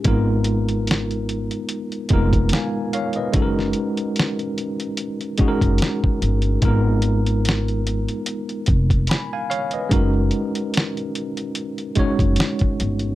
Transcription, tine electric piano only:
0.04 1.08 G#3 medium
0.04 1.08 B3 medium
0.04 1.09 D#4 medium
0.04 1.09 F4 medium
0.04 1.09 A#4 medium
2.10 2.87 G#3 medium
2.10 2.87 B3 medium
2.10 2.88 D#4 medium
2.10 2.88 F4 medium
2.10 2.53 A#4 medium
2.53 2.92 F5 soft
2.53 2.91 G#5 medium
2.93 3.15 C#5 medium
2.93 3.15 F5 medium
3.16 3.55 B4 soft
3.16 3.55 D#5 medium
3.32 4.36 G#3 medium
3.32 4.37 C#4 medium
3.32 4.37 D#4 medium
3.32 4.37 F#4 medium
3.32 3.42 A4 medium
3.42 4.41 A#4 medium
5.38 6.15 G#3 medium
5.38 6.16 C#4 medium
5.38 6.16 D#4 medium
5.38 6.17 F#4 medium
5.38 5.48 G#4 medium
5.48 6.20 A#4 medium
6.62 7.65 G#3 medium
6.62 7.66 B3 medium
6.62 7.66 D#4 medium
6.62 7.66 F4 medium
6.62 7.67 A#4 medium
9.09 9.31 G#5 soft
9.09 9.31 B5 medium
9.33 9.49 F5 medium
9.33 9.50 G#5 medium
9.50 9.72 C#5 medium
9.50 9.72 F5 medium
9.73 10.13 B4 soft
9.73 10.12 D#5 medium
9.89 10.93 G#3 medium
9.89 10.94 C#4 medium
9.89 10.94 D#4 medium
9.89 10.95 F#4 medium
9.89 10.95 A#4 medium
11.96 12.73 G#3 medium
11.96 12.73 C#4 medium
11.96 12.74 D#4 medium
11.96 12.74 F#4 medium
11.96 12.74 C#5 medium

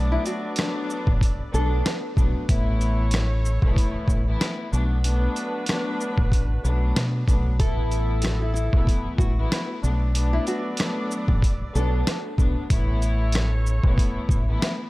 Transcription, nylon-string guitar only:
0.12 0.24 E4 medium
0.27 1.50 F#4 medium
1.54 2.46 A4 medium
7.60 8.20 A4 loud
8.23 8.40 F#4 medium
8.42 8.52 E4 medium
8.54 9.15 E4 medium
9.18 9.66 F#4 loud
10.33 10.46 E4 medium
10.48 11.71 F#4 medium
11.76 12.67 A4 medium

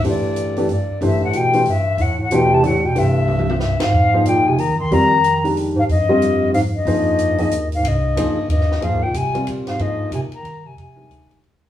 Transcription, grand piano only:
0.05 0.53 E3 medium
0.05 0.53 A3 soft
0.05 0.53 D4 soft
0.05 0.53 G4 soft
0.05 0.53 C5 medium
0.57 0.68 E3 medium
0.57 0.68 A3 medium
0.57 0.68 D4 medium
0.57 0.68 G4 medium
0.57 0.68 D5 medium
1.01 1.50 E3 medium
1.01 1.50 A3 soft
1.01 1.50 D4 medium
1.01 1.50 G4 soft
1.01 1.50 C5 medium
1.53 1.64 E3 medium
1.53 1.65 A3 soft
1.53 1.65 D4 soft
1.53 1.65 G4 medium
1.53 1.65 C5 medium
2.32 2.61 E3 medium
2.32 2.61 A3 medium
2.32 2.62 D4 medium
2.32 2.62 G4 medium
2.32 2.63 C5 medium
2.63 2.81 E3 medium
2.63 2.81 A3 medium
2.63 2.81 D4 soft
2.63 2.81 G4 medium
2.63 2.81 D5 medium
2.95 3.44 E3 soft
2.95 3.44 A3 soft
2.95 3.44 D4 soft
2.95 3.44 G4 soft
2.95 3.45 C5 medium
4.14 4.56 F3 medium
4.14 4.56 A#3 medium
4.14 4.56 D#4 medium
4.14 4.56 G#4 medium
4.14 4.56 C5 medium
4.91 5.09 G3 medium
4.91 5.09 C4 medium
4.91 5.10 F4 medium
4.91 5.10 A#4 medium
4.91 5.10 D5 medium
5.44 5.86 D#3 medium
5.44 5.86 G#3 soft
5.44 5.86 D4 medium
5.44 5.86 G4 soft
5.44 5.86 A#4 medium
6.09 6.51 G3 medium
6.09 6.51 C4 medium
6.09 6.51 F4 medium
6.09 6.51 A#4 medium
6.09 6.52 D#5 medium
6.87 7.35 F3 medium
6.87 7.35 A#3 medium
6.87 7.35 D#4 medium
6.87 7.35 G#4 medium
6.87 7.35 C5 medium
7.39 7.50 F3 medium
7.39 7.50 A#3 medium
7.39 7.50 D#4 medium
7.39 7.50 G#4 medium
7.39 7.50 D#5 medium
8.17 8.35 F3 medium
8.17 8.35 A#3 medium
8.17 8.35 D#4 medium
8.17 8.35 G#4 medium
8.17 8.35 C5 medium
8.81 8.99 F3 medium
8.81 8.99 A#3 medium
8.81 8.99 D#4 soft
8.81 9.00 G#4 medium
8.81 9.00 C5 medium
9.34 9.77 G3 medium
9.34 9.77 C4 medium
9.34 9.77 F4 medium
9.34 9.77 A#4 medium
9.34 9.77 D5 medium
9.79 10.28 F3 medium
9.79 10.28 A#3 soft
9.79 10.28 D#4 medium
9.79 10.28 G#4 medium
9.79 10.28 C5 medium
10.96 11.39 D#3 medium
10.96 11.39 G3 soft
10.96 11.39 G#3 soft
10.96 11.39 D4 medium
10.96 11.39 A#4 medium

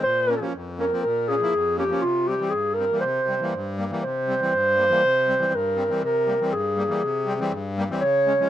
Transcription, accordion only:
0.03 0.40 A#2 medium
0.28 0.34 A#3 medium
0.28 0.35 C#4 medium
0.40 0.53 F3 medium
0.40 0.53 A#3 medium
0.40 0.53 C#4 medium
0.54 0.91 F2 medium
0.78 0.84 A#3 medium
0.78 0.85 C#4 medium
0.92 1.03 F3 medium
0.92 1.04 A#3 medium
0.92 1.04 C4 medium
1.04 1.41 A#2 medium
1.29 1.35 A#3 medium
1.29 1.35 C#4 medium
1.41 1.53 F3 medium
1.41 1.53 A#3 medium
1.41 1.54 E4 medium
1.53 1.90 F2 medium
1.77 1.84 A#3 medium
1.77 1.84 C#4 medium
1.89 2.02 F3 medium
1.89 2.03 A#3 soft
1.89 2.03 C#4 medium
2.03 2.40 C3 medium
2.28 2.34 G3 medium
2.28 2.35 C4 medium
2.39 2.52 E3 medium
2.39 2.53 G3 soft
2.39 2.53 C4 medium
2.52 2.90 G2 medium
2.78 2.84 G3 medium
2.78 2.85 C4 medium
2.90 3.03 E3 medium
2.90 3.04 G3 soft
2.90 3.04 A#3 medium
3.03 3.40 C3 medium
3.28 3.34 G3 medium
3.28 3.35 C4 medium
3.40 3.53 E3 medium
3.40 3.54 G3 medium
3.40 3.54 A#3 medium
3.54 3.91 G2 medium
3.78 3.84 G3 medium
3.78 3.85 A#3 medium
3.90 4.03 E3 medium
3.90 4.03 G3 medium
3.90 4.04 A#3 medium
4.03 4.40 C3 medium
4.28 4.34 G3 medium
4.28 4.35 C4 medium
4.40 4.53 E3 medium
4.40 4.53 G3 medium
4.40 4.54 C4 medium
4.53 4.90 G2 medium
4.77 4.84 G3 medium
4.77 4.85 A#3 medium
4.89 5.02 E3 medium
4.89 5.03 G3 medium
4.89 5.03 A#3 medium
5.03 5.40 C3 medium
5.28 5.34 G3 medium
5.28 5.35 C4 medium
5.39 5.52 E3 medium
5.39 5.52 G3 medium
5.39 5.53 C4 medium
5.52 5.90 G2 medium
5.76 5.83 G3 medium
5.76 5.84 C4 medium
5.89 6.02 E3 medium
5.89 6.02 G3 medium
5.89 6.02 C4 medium
6.03 6.40 C3 medium
6.26 6.33 G3 medium
6.26 6.34 A#3 medium
6.40 6.53 E3 medium
6.40 6.53 G3 medium
6.40 6.53 C4 medium
6.52 6.89 G2 medium
6.76 6.83 G3 medium
6.76 6.84 A#3 medium
6.88 7.01 E3 medium
6.88 7.02 G3 medium
6.88 7.02 A#3 medium
7.02 7.39 C3 medium
7.26 7.33 G3 medium
7.26 7.34 C4 medium
7.39 7.52 E3 medium
7.39 7.52 G3 medium
7.39 7.52 C4 medium
7.52 7.89 G2 medium
7.78 7.84 G3 medium
7.78 7.84 A#3 loud
7.90 8.02 E3 medium
7.90 8.02 G3 medium
7.90 8.03 C4 medium
8.02 8.39 C#3 medium
8.26 8.33 G#3 medium
8.26 8.33 C#4 medium
8.39 8.49 F3 medium
8.39 8.49 G#3 soft
8.39 8.49 C#4 medium

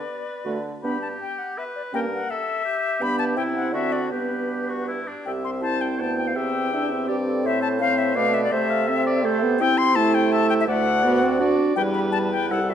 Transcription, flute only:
0.00 0.62 D5 medium
0.83 1.00 B5 medium
1.02 1.08 A5 medium
1.21 1.40 G5 medium
1.38 1.57 F#5 medium
1.58 1.64 E5 medium
1.76 1.82 D5 medium
1.94 2.00 G5 medium
2.13 2.32 F#5 medium
2.30 3.03 E5 loud
3.02 3.18 B5 loud
3.19 3.25 A5 loud
3.36 3.42 G5 loud
3.55 3.73 F#5 medium
3.74 3.94 E5 medium
3.92 4.11 D5 medium
4.12 5.06 B4 medium
5.25 5.31 G5 medium
5.44 5.50 C6 medium
5.62 5.83 A5 loud
5.81 5.98 G5 medium
5.99 6.17 A5 medium
6.18 6.29 G5 medium
6.27 6.37 F5 medium
6.35 7.19 G5 loud
7.45 7.61 E5 loud
7.62 7.68 A5 loud
7.80 8.00 F5 loud
7.98 8.16 E5 loud
8.15 8.35 F5 loud
8.34 8.43 E5 loud
8.44 8.53 D5 loud
8.52 9.43 E5 loud
9.60 9.79 G5 loud
9.78 9.97 C6 loud
9.96 10.16 A5 loud
10.14 10.34 G5 loud
10.32 10.49 A5 loud
10.50 10.54 G5 loud
10.61 10.64 E5 loud
10.67 11.57 F#5 loud
11.76 11.82 G5 loud
11.94 12.00 B5 medium
12.12 12.18 A5 loud
12.31 12.50 G5 loud
12.50 12.71 F#5 loud
12.70 12.74 E5 medium

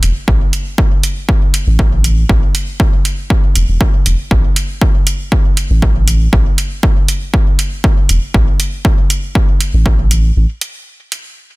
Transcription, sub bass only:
0.03 0.12 E1 medium
0.28 0.37 A1 loud
1.67 2.24 A1 loud
2.29 2.38 A1 loud
3.55 3.65 E1 medium
3.68 3.77 E1 medium
4.06 4.15 E1 medium
4.31 4.40 A1 medium
5.70 6.27 A1 loud
6.33 6.42 A1 loud
8.09 8.18 E1 medium
8.34 8.43 A1 loud
9.73 10.30 A1 loud
10.36 10.45 A1 loud

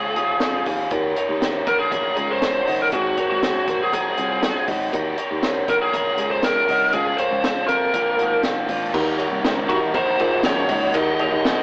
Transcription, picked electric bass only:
0.00 0.17 C#2 medium
0.17 0.38 D#2 medium
0.42 0.63 F2 medium
0.67 0.88 D#2 medium
0.91 1.13 D#2 medium
1.29 1.61 D#2 medium
1.67 2.10 A#1 medium
2.17 2.60 C#2 medium
2.68 2.89 F#1 medium
2.92 3.14 G#1 loud
3.30 3.62 G#1 medium
3.68 4.11 A#1 medium
4.18 4.50 C2 medium
4.68 4.89 G#1 medium
4.93 5.14 D#2 loud
5.31 5.63 D#2 medium
5.68 6.18 A#1 medium
6.18 6.61 C#2 medium
6.69 6.90 C2 medium
6.94 7.15 C#2 loud
7.31 7.63 C#2 medium
7.69 7.90 F2 medium
7.94 8.15 A#1 medium
8.19 8.40 G#1 medium
8.44 8.65 F#1 medium
8.69 8.90 G#1 medium
8.94 9.26 D#2 loud
9.31 9.42 C2 medium
9.44 9.66 C#2 loud
9.69 9.91 D#2 medium
9.94 10.15 A#1 medium
10.20 10.41 A#2 medium
10.45 10.66 F#2 loud
10.70 10.91 C#2 medium
10.94 11.26 D#2 loud
11.33 11.43 D#2 loud
11.46 11.63 F2 medium

